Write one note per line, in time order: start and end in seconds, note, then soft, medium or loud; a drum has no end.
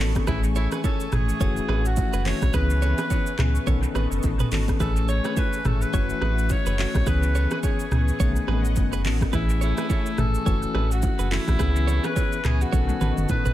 0.00 0.19 A1 medium
0.00 0.25 D#3 medium
0.00 0.25 B3 medium
0.00 0.25 C#4 medium
0.00 0.12 F#4 medium
0.00 0.11 A4 medium
0.00 0.25 A4 medium
0.00 0.25 B4 medium
0.00 0.26 D#5 medium
0.00 0.26 A5 medium
0.00 3.63 C#6 medium
0.00 clap loud
0.15 kick medium
0.15 cross-stick medium
0.15 low bongo medium
0.15 shaker soft
0.27 0.68 A1 loud
0.27 1.06 E3 medium
0.27 1.06 A3 medium
0.27 1.39 A3 medium
0.27 1.07 C#4 medium
0.27 0.41 E4 medium
0.27 1.07 G#4 loud
0.27 0.40 G#4 medium
0.27 0.39 B4 medium
0.27 3.64 E5 medium
0.27 1.40 G#5 medium
0.27 kick loud
0.27 cross-stick loud
0.27 low conga medium
0.27 shaker medium
0.44 shaker medium
0.56 0.69 E4 medium
0.56 0.68 A4 medium
0.56 0.68 C#5 medium
0.56 shaker soft
0.72 0.81 G#4 medium
0.72 0.81 B4 medium
0.72 cross-stick medium
0.72 low bongo medium
0.72 shaker medium
0.84 1.15 A4 medium
0.84 1.05 A4 medium
0.84 1.05 C#5 medium
0.84 kick loud
0.84 high bongo medium
0.84 shaker medium
1.00 shaker medium
1.12 1.32 G#1 loud
1.12 1.38 E3 medium
1.12 1.39 A3 medium
1.12 1.39 C#4 medium
1.12 1.39 G#4 medium
1.12 1.88 G#4 loud
1.12 cross-stick medium
1.12 mid tom medium
1.12 shaker soft
1.29 shaker medium
1.40 1.61 F#1 loud
1.40 2.20 E3 medium
1.40 2.53 A3 medium
1.40 2.20 A3 medium
1.40 2.20 C#4 medium
1.40 2.20 F#4 loud
1.40 1.53 A4 medium
1.40 1.53 C#5 medium
1.40 2.53 F#5 medium
1.40 kick loud
1.40 low conga medium
1.40 shaker medium
1.57 shaker medium
1.69 2.01 A1 loud
1.69 1.81 G#4 medium
1.69 1.81 B4 medium
1.69 cross-stick medium
1.69 low bongo medium
1.86 2.28 F#4 loud
1.86 shaker medium
1.97 kick loud
1.97 high bongo medium
1.97 shaker medium
2.13 2.34 F#1 medium
2.13 2.23 G#4 medium
2.13 2.22 B4 medium
2.13 shaker medium
2.25 2.52 E3 medium
2.25 2.52 A3 medium
2.25 2.52 C#4 medium
2.25 2.52 F#4 medium
2.25 2.38 F#4 medium
2.25 2.37 A4 medium
2.25 2.57 C#5 loud
2.25 clap medium
2.25 open hi-hat medium
2.25 low conga medium
2.42 2.50 B1 medium
2.42 kick loud
2.42 cross-stick medium
2.42 low bongo medium
2.42 shaker soft
2.53 2.94 C#2 loud
2.53 3.33 E3 medium
2.53 3.33 B3 medium
2.53 3.33 C#4 medium
2.53 3.33 G#4 loud
2.53 2.66 G#4 medium
2.53 2.66 B4 medium
2.53 4.78 B4 medium
2.53 3.68 B4 loud
2.53 3.66 G#5 medium
2.53 kick loud
2.53 cross-stick medium
2.53 low conga medium
2.53 shaker medium
2.70 shaker medium
2.82 2.95 A4 medium
2.82 2.94 C#5 medium
2.82 low bongo medium
2.82 shaker soft
2.98 3.08 G#4 medium
2.98 3.07 B4 medium
2.98 cross-stick medium
2.98 low bongo medium
2.98 shaker medium
3.10 3.32 G#4 medium
3.10 3.31 C#5 medium
3.10 kick loud
3.10 high bongo medium
3.10 shaker medium
3.27 shaker medium
3.38 3.59 C#2 medium
3.38 3.65 E3 medium
3.38 3.65 B3 medium
3.38 3.65 C#4 medium
3.38 3.65 G#4 medium
3.38 cross-stick loud
3.38 clap medium
3.38 mid tom loud
3.38 shaker soft
3.55 shaker medium
3.67 3.87 B1 loud
3.67 4.46 D#3 medium
3.67 4.46 B3 medium
3.67 4.46 C#4 medium
3.67 4.46 A4 loud
3.67 3.80 A4 medium
3.67 3.79 C#5 medium
3.67 4.79 D#5 medium
3.67 4.79 A5 medium
3.67 11.55 C#6 medium
3.67 kick loud
3.67 low conga medium
3.67 shaker medium
3.83 shaker medium
3.95 4.07 A1 loud
3.95 4.08 G#4 medium
3.95 4.07 B4 medium
3.95 cross-stick medium
3.95 low bongo medium
3.95 shaker soft
4.11 4.20 F#1 medium
4.11 shaker medium
4.23 4.44 A1 medium
4.23 kick loud
4.23 high bongo medium
4.23 shaker medium
4.40 4.49 G#4 medium
4.40 4.49 B4 medium
4.40 mid tom loud
4.40 shaker medium
4.52 4.72 G#1 loud
4.52 4.78 D#3 medium
4.52 4.78 B3 medium
4.52 4.78 C#4 medium
4.52 4.65 F#4 medium
4.52 4.78 A4 medium
4.52 4.64 A4 medium
4.52 clap medium
4.52 open hi-hat medium
4.52 low conga medium
4.52 shaker medium
4.68 kick loud
4.68 cross-stick medium
4.68 low bongo medium
4.68 shaker soft
4.80 5.20 A1 loud
4.80 5.59 E3 medium
4.80 5.59 A3 medium
4.80 7.04 A3 medium
4.80 5.59 C#4 medium
4.80 5.60 G#4 loud
4.80 4.93 G#4 medium
4.80 5.07 A4 loud
4.80 4.92 B4 medium
4.80 8.17 E5 medium
4.80 5.92 G#5 medium
4.80 kick loud
4.80 cross-stick medium
4.80 low conga medium
4.80 shaker medium
4.96 shaker medium
5.08 5.21 A4 medium
5.08 5.21 C#5 medium
5.08 5.39 C#5 loud
5.08 shaker soft
5.24 5.34 G#4 medium
5.24 5.34 B4 medium
5.24 cross-stick medium
5.24 low bongo medium
5.24 shaker medium
5.37 5.58 A4 medium
5.37 5.67 B4 loud
5.37 5.58 C#5 medium
5.37 kick loud
5.37 high bongo medium
5.37 shaker medium
5.53 shaker medium
5.65 5.85 G#1 loud
5.65 5.91 E3 medium
5.65 5.91 A3 medium
5.65 5.92 C#4 medium
5.65 5.92 G#4 medium
5.65 5.84 A4 medium
5.65 cross-stick loud
5.65 mid tom loud
5.65 shaker soft
5.82 6.53 B4 loud
5.82 shaker soft
5.93 6.13 F#1 loud
5.93 6.72 E3 medium
5.93 6.73 A3 medium
5.93 6.73 C#4 medium
5.93 6.73 F#4 loud
5.93 6.06 A4 medium
5.93 6.06 C#5 medium
5.93 7.06 F#5 medium
5.93 kick loud
5.93 low conga medium
5.93 shaker medium
6.10 shaker soft
6.21 6.53 A1 medium
6.21 6.34 G#4 medium
6.21 6.34 B4 medium
6.21 cross-stick medium
6.21 low bongo medium
6.38 shaker medium
6.50 7.09 C#5 loud
6.50 kick medium
6.50 high bongo medium
6.50 shaker medium
6.66 6.86 F#1 loud
6.66 6.76 G#4 medium
6.66 6.75 B4 medium
6.66 shaker medium
6.78 7.05 E3 medium
6.78 7.05 A3 medium
6.78 7.05 C#4 medium
6.78 7.05 F#4 medium
6.78 6.91 F#4 medium
6.78 6.90 A4 medium
6.78 clap loud
6.78 open hi-hat medium
6.78 low conga medium
6.95 7.03 B1 medium
6.95 kick loud
6.95 cross-stick medium
6.95 low bongo medium
6.95 shaker soft
7.06 7.47 C#2 loud
7.06 7.86 E3 medium
7.06 7.86 B3 medium
7.06 7.86 C#4 medium
7.06 7.86 G#4 loud
7.06 7.19 G#4 medium
7.06 9.31 B4 medium
7.06 7.19 B4 medium
7.06 7.52 B4 loud
7.06 8.19 G#5 medium
7.06 kick loud
7.06 cross-stick medium
7.06 low conga medium
7.06 shaker medium
7.23 shaker medium
7.35 7.48 A4 medium
7.35 7.47 C#5 medium
7.35 shaker soft
7.51 7.61 G#4 medium
7.51 7.60 B4 medium
7.51 7.58 B4 medium
7.51 cross-stick medium
7.51 low bongo medium
7.51 shaker medium
7.63 7.84 G#4 medium
7.63 8.73 G#4 medium
7.63 7.84 C#5 medium
7.63 kick loud
7.63 high bongo medium
7.63 shaker medium
7.80 shaker medium
7.91 8.12 C#2 medium
7.91 8.18 E3 medium
7.91 8.18 B3 medium
7.91 8.18 C#4 medium
7.91 8.18 G#4 medium
7.91 cross-stick loud
7.91 mid tom medium
7.91 shaker soft
8.08 shaker soft
8.19 8.40 B1 loud
8.19 8.99 D#3 medium
8.19 8.99 A3 loud
8.19 8.99 B3 medium
8.19 8.99 C#4 medium
8.19 8.33 A4 medium
8.19 8.32 C#5 medium
8.19 9.32 D#5 medium
8.19 9.32 F#5 medium
8.19 kick loud
8.19 low conga medium
8.19 shaker medium
8.36 shaker medium
8.48 8.78 A1 loud
8.48 8.61 G#4 medium
8.48 8.60 B4 medium
8.48 cross-stick medium
8.48 low bongo medium
8.65 shaker medium
8.76 9.06 F#1 medium
8.76 kick loud
8.76 high bongo medium
8.76 shaker medium
8.93 9.02 G#4 medium
8.93 9.02 B4 medium
8.93 shaker medium
9.05 9.25 A1 medium
9.05 9.31 D#3 medium
9.05 9.31 B3 medium
9.05 9.31 C#4 medium
9.05 9.17 F#4 medium
9.05 9.17 A4 medium
9.05 9.31 A4 medium
9.05 clap loud
9.05 open hi-hat medium
9.05 low conga medium
9.21 kick loud
9.21 cross-stick medium
9.21 low bongo medium
9.21 shaker soft
9.33 9.73 A1 loud
9.33 10.12 E3 loud
9.33 11.57 A3 medium
9.33 10.12 A3 medium
9.33 10.12 C#4 medium
9.33 9.60 E4 medium
9.33 10.12 G#4 loud
9.33 9.45 G#4 medium
9.33 9.45 B4 medium
9.33 10.45 E5 medium
9.33 10.45 G#5 medium
9.33 kick loud
9.33 cross-stick medium
9.33 low conga medium
9.33 shaker medium
9.49 shaker medium
9.61 10.15 E4 medium
9.61 9.74 A4 medium
9.61 9.73 C#5 medium
9.61 shaker soft
9.78 9.87 G#4 medium
9.78 9.86 B4 medium
9.78 cross-stick medium
9.78 low bongo medium
9.78 shaker medium
9.89 10.11 A4 medium
9.89 10.10 C#5 medium
9.89 kick loud
9.89 high bongo medium
9.89 shaker medium
10.06 shaker medium
10.18 10.38 G#1 medium
10.18 10.44 E3 medium
10.18 10.44 A3 medium
10.18 10.44 C#4 medium
10.18 10.44 G#4 medium
10.18 10.93 A4 loud
10.18 cross-stick medium
10.18 mid tom loud
10.18 shaker soft
10.35 shaker soft
10.46 10.66 F#1 loud
10.46 11.25 E3 loud
10.46 11.25 A3 medium
10.46 11.25 C#4 medium
10.46 11.26 F#4 loud
10.46 10.59 A4 medium
10.46 10.58 C#5 medium
10.46 12.70 E5 medium
10.46 11.58 F#5 medium
10.46 kick loud
10.46 low conga medium
10.46 shaker medium
10.63 shaker medium
10.75 11.06 A1 loud
10.75 10.87 G#4 medium
10.75 10.87 B4 medium
10.75 cross-stick medium
10.75 low bongo medium
10.91 11.34 F#4 medium
10.91 shaker medium
11.02 kick loud
11.02 high bongo medium
11.02 shaker medium
11.19 11.39 F#1 medium
11.19 11.28 G#4 medium
11.19 11.28 B4 medium
11.19 shaker medium
11.31 11.57 E3 medium
11.31 11.58 A3 medium
11.31 11.58 C#4 medium
11.31 12.07 E4 loud
11.31 11.58 F#4 medium
11.31 11.44 F#4 medium
11.31 11.43 A4 medium
11.31 clap loud
11.31 open hi-hat medium
11.31 low conga medium
11.48 11.56 B1 medium
11.48 kick loud
11.48 cross-stick medium
11.48 low bongo medium
11.48 shaker soft
11.59 12.00 C#2 loud
11.59 12.39 E3 medium
11.59 12.39 B3 medium
11.59 12.39 C#4 medium
11.59 12.39 G#4 loud
11.59 11.72 G#4 medium
11.59 11.71 B4 medium
11.59 13.53 B4 medium
11.59 12.71 G#5 medium
11.59 13.53 C#6 medium
11.59 kick loud
11.59 cross-stick medium
11.59 low conga medium
11.59 shaker medium
11.76 shaker medium
11.87 12.00 A4 medium
11.87 12.00 C#5 medium
11.87 low bongo medium
11.87 shaker soft
12.04 12.13 G#4 medium
12.04 12.13 B4 medium
12.04 12.47 B4 loud
12.04 cross-stick medium
12.04 low bongo medium
12.04 shaker medium
12.16 12.37 G#4 medium
12.16 12.36 C#5 medium
12.16 kick loud
12.16 high bongo medium
12.16 shaker medium
12.33 shaker medium
12.44 12.65 C#2 medium
12.44 12.71 E3 medium
12.44 12.71 B3 medium
12.44 12.71 C#4 medium
12.44 12.71 G#4 medium
12.44 12.63 G#4 loud
12.44 cross-stick loud
12.44 clap medium
12.44 mid tom medium
12.44 shaker soft
12.61 13.30 F#4 medium
12.61 shaker soft
12.72 12.93 B1 loud
12.72 13.52 D#3 loud
12.72 13.52 B3 medium
12.72 13.52 C#4 medium
12.72 13.52 A4 loud
12.72 12.85 A4 medium
12.72 12.85 C#5 medium
12.72 13.53 D#5 medium
12.72 13.53 A5 medium
12.72 kick loud
12.72 high tom medium
12.72 low conga medium
12.72 shaker medium
12.89 high tom medium
12.89 shaker soft
13.01 13.13 A1 loud
13.01 13.13 G#4 medium
13.01 13.13 B4 medium
13.01 mid tom medium
13.01 low bongo medium
13.01 shaker soft
13.17 13.26 F#1 medium
13.17 mid tom medium
13.17 shaker medium
13.29 13.53 B4 loud
13.29 kick medium
13.29 mid tom medium
13.29 high bongo medium
13.29 shaker medium
13.46 13.53 A1 medium
13.46 13.53 G#4 medium
13.46 13.53 B4 medium
13.46 mid tom medium
13.46 shaker medium